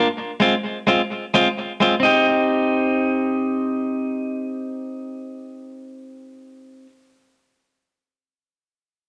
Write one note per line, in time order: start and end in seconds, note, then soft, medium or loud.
0.40 0.53 G#3 medium
0.40 0.54 C4 medium
0.40 0.54 F4 medium
0.87 1.00 G#3 medium
0.87 1.01 C4 medium
0.87 1.01 F4 medium
1.34 1.47 G#3 medium
1.34 1.48 C4 medium
1.34 1.48 F4 loud
1.80 1.94 G#3 medium
1.80 1.94 C4 medium
1.80 1.95 F4 medium
2.00 6.86 C4 medium
2.00 6.90 D#4 medium
2.05 6.92 G4 medium